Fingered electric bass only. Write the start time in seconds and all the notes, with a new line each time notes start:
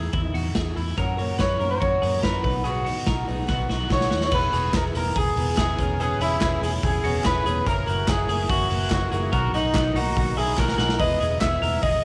0.13 E2
0.34 E2
0.55 E2
0.77 E2
0.98 F#2
1.40 F#2
1.60 F#2
1.82 F#2
2.02 F#2
2.23 F#2
2.44 B1
3.07 B1
3.28 B1
3.49 B1
3.69 B1
3.91 B1
4.12 D#2
4.32 E1
4.53 E1
4.74 E1
4.94 E1
5.16 E1
5.36 E1
5.58 E1
5.78 E1
6.19 E1
6.41 E1
6.62 E1
6.83 E1
7.03 E1
7.24 E1
7.45 E1
7.67 F#1
7.87 F#1
8.08 F#1
8.29 F#1
8.50 F#1
8.70 F#1
8.92 F#1
9.12 F#1
9.33 B1
9.52 B1
9.75 B1
9.94 B1
10.17 B1
10.36 B1
10.58 B1
10.79 B1
11.00 E1
11.21 E1
11.41 E1
11.62 E1
11.83 E1